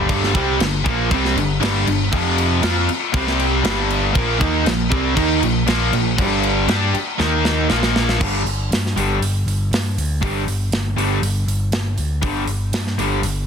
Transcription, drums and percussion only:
0.09 kick, crash
0.24 snare
0.35 kick, crash
0.60 snare, crash
0.86 kick, crash
1.11 kick, crash
1.25 snare
1.37 crash
1.63 snare, crash
1.87 crash
2.12 kick, crash
2.38 crash
2.63 snare, crash
2.89 crash
3.14 kick, crash
3.27 snare
3.39 crash
3.64 snare, crash
3.90 crash
4.15 kick, crash
4.41 kick, crash
4.66 snare, crash
4.91 kick, crash
5.17 kick, crash
5.43 crash
5.67 snare, crash
5.93 crash
6.18 kick, crash
6.43 crash
6.68 snare, crash
6.94 crash
7.20 snare
7.45 snare
7.70 snare
7.83 snare
7.96 snare
8.09 snare
8.21 kick, crash
8.47 open hi-hat
8.72 snare, open hi-hat
8.86 snare
8.98 open hi-hat
9.22 open hi-hat
9.48 open hi-hat
9.73 snare, open hi-hat
9.98 open hi-hat
10.23 kick, open hi-hat
10.48 open hi-hat
10.72 snare, open hi-hat
10.98 open hi-hat
11.23 open hi-hat
11.48 open hi-hat
11.72 snare, open hi-hat
11.98 open hi-hat
12.23 kick, open hi-hat
12.48 open hi-hat
12.73 snare, open hi-hat
12.87 snare
12.99 open hi-hat
13.23 open hi-hat

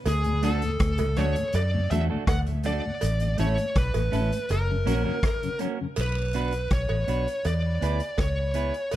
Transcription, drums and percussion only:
0.06 closed hi-hat, cowbell
0.24 closed hi-hat
0.43 closed hi-hat
0.62 closed hi-hat
0.80 kick, cross-stick, closed hi-hat
0.98 closed hi-hat, cowbell
1.16 cross-stick, closed hi-hat
1.36 closed hi-hat
1.53 closed hi-hat, cowbell
1.91 closed hi-hat
2.27 kick, cross-stick, closed hi-hat, cowbell
2.47 closed hi-hat
2.63 closed hi-hat
3.01 closed hi-hat, cowbell
3.20 closed hi-hat
3.38 closed hi-hat
3.58 closed hi-hat
3.75 kick, cross-stick, closed hi-hat
3.94 closed hi-hat, cowbell
4.13 closed hi-hat
4.32 closed hi-hat
4.49 closed hi-hat, cowbell
4.87 closed hi-hat
5.23 kick, cross-stick, closed hi-hat, cowbell
5.43 closed hi-hat
5.59 closed hi-hat
5.96 closed hi-hat, cowbell, vibraslap
6.33 closed hi-hat
6.52 closed hi-hat
6.71 kick, cross-stick, closed hi-hat
6.89 cowbell
7.08 closed hi-hat
7.28 closed hi-hat
7.45 closed hi-hat, cowbell
7.82 closed hi-hat
8.00 closed hi-hat
8.18 kick, cross-stick, closed hi-hat, cowbell
8.54 closed hi-hat
8.74 closed hi-hat
8.91 closed hi-hat, cowbell

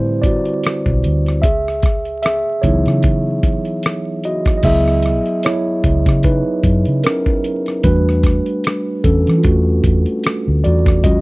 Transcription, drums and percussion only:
0.23 kick, closed hi-hat
0.45 closed hi-hat
0.64 cross-stick, closed hi-hat
0.86 kick
1.04 closed hi-hat
1.26 cross-stick, closed hi-hat
1.43 kick, closed hi-hat
1.68 cross-stick
1.82 kick, cross-stick, closed hi-hat
2.05 closed hi-hat
2.23 cross-stick, closed hi-hat
2.63 kick, closed hi-hat
2.86 cross-stick, closed hi-hat
3.03 kick, closed hi-hat
3.43 kick, closed hi-hat
3.65 closed hi-hat
3.83 cross-stick, closed hi-hat
4.24 closed hi-hat
4.45 kick, cross-stick, closed hi-hat
4.63 kick, closed hi-hat, crash
4.88 cross-stick
5.02 cross-stick, closed hi-hat
5.26 closed hi-hat
5.43 cross-stick, closed hi-hat
5.84 kick, closed hi-hat
6.06 kick, cross-stick, closed hi-hat
6.23 kick, closed hi-hat
6.64 kick, closed hi-hat
6.85 closed hi-hat
7.04 cross-stick, closed hi-hat
7.26 kick
7.44 closed hi-hat
7.66 cross-stick, closed hi-hat
7.83 kick, closed hi-hat
8.09 cross-stick
8.23 kick, cross-stick, closed hi-hat
8.46 closed hi-hat
8.64 cross-stick, closed hi-hat
9.04 kick, closed hi-hat
9.27 cross-stick, closed hi-hat
9.43 kick, closed hi-hat
9.84 kick, closed hi-hat
10.06 closed hi-hat
10.24 cross-stick, closed hi-hat
10.64 closed hi-hat
10.86 kick, cross-stick, closed hi-hat
11.04 kick, closed hi-hat

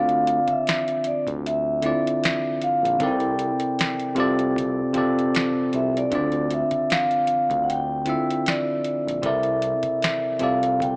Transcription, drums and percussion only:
0.09 closed hi-hat
0.27 closed hi-hat
0.48 kick, closed hi-hat
0.67 snare, closed hi-hat
0.88 closed hi-hat
1.04 closed hi-hat
1.27 kick, closed hi-hat
1.47 closed hi-hat
1.82 closed hi-hat
2.07 closed hi-hat
2.23 snare, closed hi-hat
2.62 closed hi-hat
2.85 closed hi-hat
3.00 kick, closed hi-hat
3.20 closed hi-hat
3.39 closed hi-hat
3.60 closed hi-hat
3.79 snare, closed hi-hat
3.99 closed hi-hat
4.16 closed hi-hat
4.39 closed hi-hat
4.56 kick, closed hi-hat
4.94 kick, closed hi-hat
5.19 closed hi-hat
5.35 snare, closed hi-hat
5.73 closed hi-hat
5.97 closed hi-hat
6.11 kick, closed hi-hat
6.32 closed hi-hat
6.50 closed hi-hat
6.71 kick, closed hi-hat
6.90 snare, closed hi-hat
7.11 closed hi-hat
7.27 closed hi-hat
7.50 kick, closed hi-hat
7.70 closed hi-hat
8.06 closed hi-hat
8.31 closed hi-hat
8.46 snare, closed hi-hat
8.85 closed hi-hat
9.09 closed hi-hat
9.23 kick, closed hi-hat
9.44 closed hi-hat
9.62 closed hi-hat
9.83 kick, closed hi-hat
10.02 snare, closed hi-hat
10.39 closed hi-hat
10.63 closed hi-hat
10.80 kick, closed hi-hat

